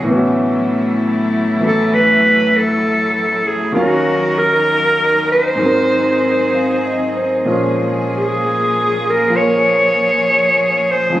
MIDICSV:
0, 0, Header, 1, 4, 480
1, 0, Start_track
1, 0, Tempo, 923077
1, 35, Time_signature, 4, 2, 24, 8
1, 5824, End_track
2, 0, Start_track
2, 0, Title_t, "Clarinet"
2, 0, Program_c, 0, 71
2, 862, Note_on_c, 0, 69, 70
2, 1010, Note_on_c, 0, 71, 79
2, 1018, Note_off_c, 0, 69, 0
2, 1336, Note_on_c, 0, 69, 77
2, 1344, Note_off_c, 0, 71, 0
2, 1807, Note_on_c, 0, 68, 77
2, 1815, Note_off_c, 0, 69, 0
2, 1945, Note_off_c, 0, 68, 0
2, 1948, Note_on_c, 0, 66, 77
2, 2278, Note_on_c, 0, 70, 85
2, 2286, Note_off_c, 0, 66, 0
2, 2756, Note_off_c, 0, 70, 0
2, 2767, Note_on_c, 0, 72, 82
2, 3711, Note_off_c, 0, 72, 0
2, 4249, Note_on_c, 0, 68, 68
2, 4730, Note_on_c, 0, 70, 68
2, 4738, Note_off_c, 0, 68, 0
2, 4868, Note_on_c, 0, 73, 87
2, 4876, Note_off_c, 0, 70, 0
2, 5672, Note_on_c, 0, 72, 72
2, 5680, Note_off_c, 0, 73, 0
2, 5809, Note_off_c, 0, 72, 0
2, 5824, End_track
3, 0, Start_track
3, 0, Title_t, "Cello section"
3, 0, Program_c, 1, 48
3, 0, Note_on_c, 1, 54, 64
3, 45, Note_on_c, 1, 64, 64
3, 47, Note_on_c, 1, 57, 82
3, 1931, Note_off_c, 1, 64, 0
3, 1932, Note_off_c, 1, 57, 0
3, 1949, Note_on_c, 1, 63, 62
3, 1949, Note_on_c, 1, 70, 80
3, 2897, Note_off_c, 1, 70, 0
3, 2904, Note_on_c, 1, 60, 59
3, 2905, Note_on_c, 1, 68, 71
3, 3855, Note_off_c, 1, 54, 0
3, 3860, Note_off_c, 1, 63, 0
3, 3867, Note_off_c, 1, 60, 0
3, 3868, Note_off_c, 1, 68, 0
3, 3878, Note_on_c, 1, 58, 57
3, 3879, Note_on_c, 1, 53, 62
3, 3882, Note_on_c, 1, 68, 68
3, 5778, Note_off_c, 1, 58, 0
3, 5800, Note_on_c, 1, 59, 55
3, 5800, Note_on_c, 1, 63, 56
3, 5824, Note_off_c, 1, 53, 0
3, 5824, Note_off_c, 1, 59, 0
3, 5824, Note_off_c, 1, 63, 0
3, 5824, Note_off_c, 1, 68, 0
3, 5824, End_track
4, 0, Start_track
4, 0, Title_t, "Grand piano"
4, 0, Program_c, 2, 0
4, 0, Control_c, 2, 64, 127
4, 14, Note_on_c, 2, 45, 55
4, 23, Note_on_c, 2, 52, 49
4, 39, Note_on_c, 2, 59, 51
4, 42, Control_c, 2, 64, 0
4, 58, Note_on_c, 2, 61, 46
4, 70, Note_on_c, 2, 66, 61
4, 121, Control_c, 2, 64, 127
4, 827, Note_off_c, 2, 52, 0
4, 834, Note_on_c, 2, 52, 43
4, 839, Note_on_c, 2, 54, 38
4, 844, Note_on_c, 2, 57, 35
4, 849, Note_on_c, 2, 64, 47
4, 1934, Note_off_c, 2, 45, 0
4, 1934, Note_on_c, 2, 39, 54
4, 1940, Note_on_c, 2, 51, 50
4, 1941, Note_off_c, 2, 54, 0
4, 1943, Note_off_c, 2, 52, 0
4, 1947, Note_off_c, 2, 59, 0
4, 1948, Note_off_c, 2, 57, 0
4, 1948, Note_off_c, 2, 61, 0
4, 1949, Note_on_c, 2, 54, 46
4, 1950, Note_off_c, 2, 64, 0
4, 1952, Control_c, 2, 64, 0
4, 1956, Note_on_c, 2, 61, 52
4, 1957, Note_on_c, 2, 77, 59
4, 1962, Note_off_c, 2, 66, 0
4, 2048, Control_c, 2, 64, 127
4, 2888, Note_on_c, 2, 44, 53
4, 2892, Note_off_c, 2, 51, 0
4, 2899, Note_off_c, 2, 39, 0
4, 2900, Note_on_c, 2, 51, 46
4, 2907, Note_off_c, 2, 54, 0
4, 2910, Note_off_c, 2, 61, 0
4, 2911, Note_off_c, 2, 77, 0
4, 2912, Control_c, 2, 64, 0
4, 2916, Note_on_c, 2, 54, 45
4, 2930, Note_on_c, 2, 60, 44
4, 2942, Note_on_c, 2, 70, 54
4, 3013, Control_c, 2, 64, 127
4, 3402, Note_on_c, 2, 77, 37
4, 3564, Note_on_c, 2, 75, 42
4, 3710, Note_off_c, 2, 77, 0
4, 3725, Note_on_c, 2, 72, 43
4, 3813, Note_off_c, 2, 75, 0
4, 3869, Note_off_c, 2, 44, 0
4, 3874, Note_on_c, 2, 46, 45
4, 3875, Note_off_c, 2, 51, 0
4, 3879, Note_on_c, 2, 53, 44
4, 3880, Note_on_c, 2, 56, 45
4, 3883, Note_off_c, 2, 54, 0
4, 3884, Note_on_c, 2, 61, 42
4, 3885, Control_c, 2, 64, 0
4, 3886, Note_on_c, 2, 68, 51
4, 3890, Note_off_c, 2, 60, 0
4, 3896, Note_off_c, 2, 70, 0
4, 3966, Control_c, 2, 64, 127
4, 3974, Note_off_c, 2, 72, 0
4, 4826, Note_off_c, 2, 53, 0
4, 4834, Note_on_c, 2, 53, 35
4, 4845, Note_on_c, 2, 58, 31
4, 4852, Note_on_c, 2, 70, 38
4, 5771, Note_on_c, 2, 41, 45
4, 5776, Note_off_c, 2, 53, 0
4, 5784, Note_on_c, 2, 53, 42
4, 5790, Note_off_c, 2, 56, 0
4, 5796, Note_off_c, 2, 46, 0
4, 5798, Note_on_c, 2, 56, 41
4, 5799, Note_off_c, 2, 58, 0
4, 5801, Note_off_c, 2, 61, 0
4, 5802, Note_off_c, 2, 68, 0
4, 5802, Note_off_c, 2, 70, 0
4, 5803, Control_c, 2, 64, 0
4, 5824, Note_off_c, 2, 41, 0
4, 5824, Note_off_c, 2, 53, 0
4, 5824, Note_off_c, 2, 56, 0
4, 5824, End_track
0, 0, End_of_file